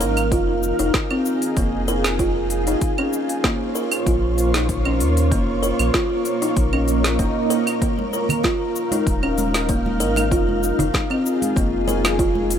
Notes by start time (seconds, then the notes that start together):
Already playing: D#4 A#4 F5
0.01 G#1 A#4, open hi-hat, shaker
0.17 open hi-hat, claves, shaker
0.31 F1 F4 G#4, kick, open hi-hat, shaker
0.63 shaker
0.79 F1 D#4, open hi-hat, shaker
0.94 kick, snare, shaker
1.11 C4, claves
1.26 shaker
1.42 open hi-hat, shaker
1.57 F1 A#3, kick, open hi-hat, shaker
1.88 A#4, open hi-hat, shaker
2.04 snare, open hi-hat, claves, shaker
2.19 F4, kick, open hi-hat, shaker
2.50 open hi-hat, shaker
2.67 D#4, open hi-hat, shaker
2.81 A#3 C5 C#5, kick, open hi-hat, shaker
2.98 C#4, claves
3.13 shaker
3.29 open hi-hat, shaker
3.44 A#3, kick, snare, shaker
3.75 A#4, shaker
3.92 open hi-hat, claves, shaker
4.07 A#1 F4, kick, open hi-hat, shaker
4.38 open hi-hat, shaker
4.54 D#4, snare, open hi-hat, shaker
4.69 kick, open hi-hat, shaker
4.85 C#4, claves
5.00 D#2, open hi-hat, shaker
5.17 open hi-hat, shaker
5.32 F1 A#3 A#4, kick, open hi-hat, shaker
5.63 A#4, open hi-hat, shaker
5.79 A#1, open hi-hat, claves, shaker
5.94 F4, kick, snare, shaker
6.25 open hi-hat, shaker
6.42 D#4, open hi-hat, shaker
6.57 A#1, kick, open hi-hat, swell, shaker
6.73 C#4, claves
6.88 open hi-hat, shaker
7.04 snare, open hi-hat, shaker
7.19 F1 A#3, kick, open hi-hat, shaker
7.50 A#4, open hi-hat, shaker
7.67 open hi-hat, claves, shaker
7.82 A#3 D#4 F5, kick, open hi-hat, shaker
7.99 high conga
8.13 A#4, shaker
8.29 open hi-hat, low conga, claves, shaker
8.44 F4, kick, snare, muted conga, shaker
8.76 shaker
8.91 D#4, open hi-hat, high conga, shaker
9.07 D#1, kick, open hi-hat, shaker
9.23 C#4, claves
9.38 open hi-hat, high conga, shaker
9.54 snare, open hi-hat, shaker
9.69 A#3, kick, open hi-hat, shaker
9.86 high conga
10.00 G#1 A#4, open hi-hat, shaker
10.16 open hi-hat, muted conga, claves, shaker
10.31 F1 F4 G#4, kick, open hi-hat, shaker
10.49 high conga
10.63 shaker
10.79 F1 D#4, open hi-hat, low conga, shaker
10.94 kick, snare, muted conga, shaker
11.10 C4, claves
11.26 shaker
11.42 open hi-hat, high conga, shaker
11.56 F1 A#3, kick, open hi-hat, shaker
11.88 A#4, open hi-hat, muted conga, shaker
12.04 snare, open hi-hat, muted conga, claves, shaker
12.19 F4, kick, open hi-hat, shaker
12.35 high conga
12.51 open hi-hat, shaker